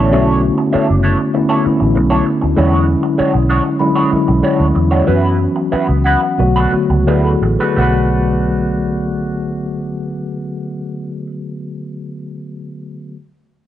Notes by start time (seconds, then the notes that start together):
Already playing: A1 D3 A3 B3 C#4 D4 E4 A4 C#5
0.11 B1 D3 A3 B3 C#4 D4 E4 F#4 A4 C#5
0.58 muted clean electric guitar stroke
0.73 D4 E4 A4 C#5, muted fingered electric bass stroke
0.88 F#1, muted clean electric guitar stroke
1.03 D4 E4 A4 C#5
1.19 muted clean electric guitar stroke
1.34 D3 A3 B3 C#4 E4, muted clean electric guitar stroke
1.49 D4 E4 A4 C#5
1.65 D3 A3 B3 C#4 E4, muted clean electric guitar stroke, muted fingered electric bass stroke
1.80 A1, muted clean electric guitar stroke
1.95 B1, muted clean electric guitar stroke
2.10 D4 E4 A4 C#5
2.26 muted clean electric guitar stroke
2.42 D2, muted clean electric guitar stroke
2.56 E2 D3 F#3 G#3 C#4 D4 E4 F#4 C#5
3.03 muted clean electric guitar stroke
3.18 G#3 D4 F#4 C#5, muted fingered electric bass stroke
3.34 B1, muted clean electric guitar stroke
3.49 G#3 D4 F#4 C#5
3.65 muted clean electric guitar stroke
3.79 D3 F#3 G#3 C#4 E4 B5, muted clean electric guitar stroke
3.95 G#3 D4 F#4 C#5
4.11 D3 F#3 G#3 C#4 E4, muted clean electric guitar stroke, muted fingered electric bass stroke
4.28 B1, muted clean electric guitar stroke
4.43 G#3 D4 F#4 C#5
4.60 D2
4.75 E2, muted clean electric guitar stroke
4.91 G#3 D4 F#4 C#5
5.06 F#2 E3 F#3 B3 C#4 E4 F#4 B4
5.56 muted clean electric guitar stroke
5.72 B3 E4 F#4 B4, muted fingered electric bass stroke
5.89 C#2, muted clean electric guitar stroke
6.04 B3 E4 F#4 B4 F#5
6.22 muted clean electric guitar stroke
6.38 B1 D3 F#3 A3 B3 F#4, muted clean electric guitar stroke
6.56 A3 D4 F#4 B4
6.71 D3 F#3 A3 B3 F#4, muted clean electric guitar stroke, muted fingered electric bass stroke
6.90 C#2, muted clean electric guitar stroke
7.07 D2 A3 D4 E4 F#4 G#4 B4
7.24 F#4 A4
7.42 A1, muted clean electric guitar stroke
7.59 A3 D4 F#4 G#4 B4
7.74 B1 D3 F#3 A3 D4 F#5
7.78 B3 F#4 B4